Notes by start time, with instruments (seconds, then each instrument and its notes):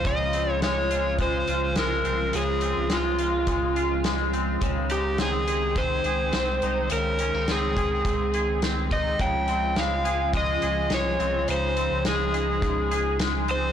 Already playing: clean electric guitar F3 C4 F4
0.05 sub bass C#2, clean electric guitar C#3, string machine C#3 F3 G#3 F4, electric slide guitar D#5, kick, closed hi-hat
0.33 clean electric guitar C4, closed hi-hat
0.52 electric slide guitar C#5
0.62 clean electric guitar G#3, electric slide guitar C#5, snare, closed hi-hat
0.91 clean electric guitar F4, closed hi-hat
1.19 clean electric guitar G#3, electric slide guitar C5, kick, closed hi-hat
1.47 sub bass C#2, clean electric guitar F4, closed hi-hat
1.76 sub bass C2, clean electric guitar G#3, electric slide guitar A#4, snare, closed hi-hat
2.05 sub bass C2, clean electric guitar C4, closed hi-hat
2.33 sub bass C#2, clean electric guitar C#3, electric slide guitar G#4, closed hi-hat
2.61 clean electric guitar C4, closed hi-hat
2.77 sub bass C#2
2.90 sub bass C#2, clean electric guitar G#3, electric slide guitar F4, snare, closed hi-hat
3.19 clean electric guitar F4, closed hi-hat
3.47 sub bass C#2, clean electric guitar G#3, kick, closed hi-hat
3.76 clean electric guitar F4, closed hi-hat
4.04 clean electric guitar G#3, snare, closed hi-hat
4.33 clean electric guitar C4, closed hi-hat
4.61 sub bass C#2, clean electric guitar C#3, string machine D#3 G5, kick, closed hi-hat
4.90 clean electric guitar D#4, electric slide guitar G4, closed hi-hat
5.18 clean electric guitar C4, electric slide guitar G#4, snare, closed hi-hat
5.48 clean electric guitar G#4, closed hi-hat
5.76 clean electric guitar C4, electric slide guitar C5, kick, closed hi-hat
6.04 sub bass C#2, clean electric guitar G#4, closed hi-hat
6.33 sub bass C2, clean electric guitar C4, snare, closed hi-hat
6.62 sub bass C2, clean electric guitar D#4, closed hi-hat
6.90 sub bass C#2, clean electric guitar C#3, electric slide guitar A#4, closed hi-hat
7.19 clean electric guitar C#4, closed hi-hat
7.34 sub bass C#2, clean electric guitar D#4
7.48 sub bass C#2, clean electric guitar C4, electric slide guitar G#4, snare, closed hi-hat
7.77 clean electric guitar G#4, kick, closed hi-hat
8.05 sub bass C#2, clean electric guitar C4, kick, closed hi-hat
8.34 clean electric guitar G#4, closed hi-hat
8.62 clean electric guitar C4, snare, closed hi-hat
8.91 clean electric guitar D#4, electric slide guitar D#5, kick, closed hi-hat
9.18 sub bass C#2, string machine C#3 F3 F4, clean electric guitar C#3, electric slide guitar G5, kick, closed hi-hat
9.48 clean electric guitar C4, closed hi-hat
9.76 clean electric guitar G#3, electric slide guitar F5, snare, closed hi-hat
10.05 clean electric guitar G#4, closed hi-hat
10.33 clean electric guitar G#3, electric slide guitar D#5, kick, closed hi-hat
10.62 sub bass C#2, clean electric guitar G#4, closed hi-hat
10.90 sub bass C2, clean electric guitar G#3, snare, closed hi-hat
10.94 electric slide guitar C#5
11.20 sub bass C2, clean electric guitar C4, closed hi-hat
11.48 sub bass C#2, clean electric guitar C#3, string machine D#4, electric slide guitar C5, closed hi-hat
11.77 clean electric guitar C4, closed hi-hat
11.92 sub bass C#2
12.05 sub bass C#2, clean electric guitar G#3, electric slide guitar G#4, snare, closed hi-hat
12.34 clean electric guitar G#4, closed hi-hat
12.62 sub bass C#2, clean electric guitar G#3, kick, closed hi-hat
12.91 clean electric guitar G#4, closed hi-hat
13.19 clean electric guitar G#3, snare, closed hi-hat
13.48 clean electric guitar C4, electric slide guitar C5, closed hi-hat